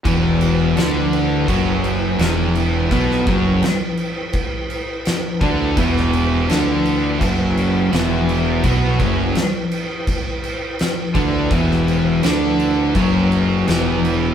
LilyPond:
<<
  \new Staff \with { instrumentName = "Tonewheel organ" } { \time 4/4 \key e \minor \tempo 4 = 84 <e' b' g''>1~ | <e' b' g''>1~ | <e' b' g''>1~ | <e' b' g''>1~ |
<e' b' g''>1 | }
  \new Staff \with { instrumentName = "Distorted electric guitar" } { \clef bass \time 4/4 \key e \minor <e, e>4 <d d'>4 <fis, fis>4 <e, e>4 | <b, b>8 <fis, fis>8 r2 r8 <d d'>8 | <e, e>4 <d d'>4 <fis, fis>4 <e, e>4 | <b, b>8 <fis, fis>8 r2 r8 <d d'>8 |
<e, e>4 <d d'>4 <fis, fis>4 <e, e>4 | }
  \new Staff \with { instrumentName = "Distorted electric guitar" } { \clef bass \time 4/4 \key e \minor <e, e>4 <d d'>4 <fis, fis>4 <e, e>4 | <b, b>8 <fis, fis>8 r2 r8 <d d'>8 | <e, e>4 <d d'>4 <fis, fis>4 <e, e>4 | <b, b>8 <fis, fis>8 r2 r8 <d d'>8 |
<e, e>4 <d d'>4 <fis, fis>4 <e, e>4 | }
  \new Staff \with { instrumentName = "Overdriven electric guitar" } { \clef bass \time 4/4 \key e \minor <e, e>4 <d d'>4 <fis, fis>4 <e, e>4 | <b, b>8 <fis, fis>8 r2 r8 <d d'>8 | <e, e>4 <d d'>4 <fis, fis>4 <e, e>4 | <b, b>8 <fis, fis>8 r2 r8 <d d'>8 |
<e, e>4 <d d'>4 <fis, fis>4 <e, e>4 | }
  \new Staff \with { instrumentName = "Fingered electric bass" } { \clef bass \time 4/4 \key e \minor e,,4 d,4 fis,,4 e,,4 | b,,8 fis,,8 r2 r8 d,8 | e,,4 d,4 fis,,4 e,,4 | b,,8 fis,,8 r2 r8 d,8 |
e,,4 d,4 fis,,4 e,,4 | }
  \new DrumStaff \with { instrumentName = "Drums" } \drummode { \time 4/4 <cymc bd>8 cymc8 <cymc sn>8 cymc8 <cymc bd>8 cymc8 <cymc sn>8 cymc8 | <cymc bd>16 sn16 <cymc bd>8 <cymc sn>8 cymc8 <cymc bd>8 cymc8 <cymc sn>8 <cymc bd>8 | <cymc bd>16 sn16 cymc8 <cymc sn>8 cymc8 <cymc bd>8 cymc8 <cymc sn>8 cymc8 | <cymc bd>8 <cymc bd>8 <cymc sn>8 cymc8 <cymc bd>8 cymc8 <cymc sn>8 <cymc bd>8 |
<cymc bd>16 sn16 cymc8 <cymc sn>8 cymc8 <cymc bd>8 cymc8 <cymc sn>8 cymc8 | }
>>